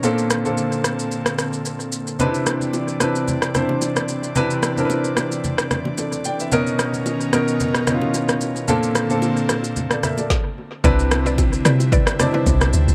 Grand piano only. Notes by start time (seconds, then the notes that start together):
0.03 A#2 A#3 C4 D4 A4
0.45 A#2 A#3 C4 D4 A4
2.19 C3 C4 D4 D#4 B4
2.27 E4
3.00 C3 C4 D4 E4 B4
3.55 C3 C4 D4 E4 C5
4.36 C3 C4 D4 E4 B4
4.77 C3 C4 D4 E4 A#4
4.85 B4
5.98 A4 D5
6.25 D5 G5
6.40 B4 E5
6.52 B2 B3 C#4 D#4 A#4
7.33 B2 B3 C#4 D#4 A#4
7.87 B2 B3 C#4 D#4 E4
7.95 F4
8.68 A#2 A#3 C4 D4 A4
9.10 A#2 A#3 C4 D4 A4
9.91 A4 D5
10.04 A#4 E5
10.19 A4 D5
10.84 C3 C4 D4 E4 B4
12.19 C3 C4 D4 D#4 D5
12.27 E4